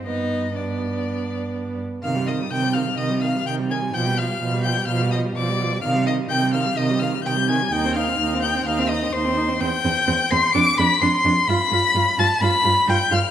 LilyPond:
<<
  \new Staff \with { instrumentName = "Violin" } { \time 4/4 \key c \minor \tempo 4 = 127 ees''4 d''2~ d''8 r8 | f'''8 ees'''8 g'''8 f'''8 ees'''8 f'''8 g'''8 aes'''8 | g'''8 f'''4 g'''8 f'''8 ees'''8 d'''4 | f'''8 ees'''8 g'''8 f'''8 ees'''8 f'''8 g'''8 aes'''8 |
g'''8 f'''4 g'''8 f'''8 ees'''8 c'''4 | \key g \mixolydian g'''4. c''''8 d''''8 b'''8 c''''4 | b'''4. a'''8 b'''4 g'''8 f'''8 | }
  \new Staff \with { instrumentName = "Violin" } { \time 4/4 \key c \minor ees'4 d'2~ d'8 r8 | f''8 ees''8 g''8 f''8 ees''8 f''8 g''8 aes''8 | g''8 f''4 g''8 f''8 ees''8 d''4 | f''8 ees''8 g''8 f''8 ees''8 f''8 g''8 aes''8 |
g''8 f''4 g''8 f''8 ees''8 c''4 | \key g \mixolydian g''4. c'''8 d'''8 b''8 c'''4 | b''4. a''8 b''4 g''8 f''8 | }
  \new Staff \with { instrumentName = "Viola" } { \clef bass \time 4/4 \key c \minor b4 b2~ b8 r8 | ees16 g16 ees16 g16 ees16 g16 ees16 g16 ees16 g16 ees16 g16 ees16 g16 ees16 g16 | f16 g16 f16 g16 f16 g16 f16 g16 f16 g16 f16 g16 f16 g16 f16 g16 | ees16 g16 ees16 g16 ees16 g16 ees16 g16 ees16 g16 ees16 g16 ees16 g16 ees16 g16 |
ees'16 c'16 ees'16 c'16 ees'16 c'16 ees'16 c'16 ees'16 c'16 ees'16 c'16 ees'16 c'16 ees'16 c'16 | \key g \mixolydian c'8 c'8 c'8 c'8 d'8 d'8 d'8 d'8 | f'8 f'8 f'8 f'8 f'8 f'8 f'8 f'8 | }
  \new Staff \with { instrumentName = "Cello" } { \clef bass \time 4/4 \key c \minor g,2.~ g,8 r8 | c4 c4 c4 c4 | b,4 b,4 b,4 b,4 | c4 c4 c4 c4 |
ees,4 ees,4 ees,4 ees,4 | \key g \mixolydian e,8 e,8 e,8 e,8 f,8 f,8 f,8 f,8 | g,8 g,8 g,8 g,8 g,8 g,8 g,8 g,8 | }
>>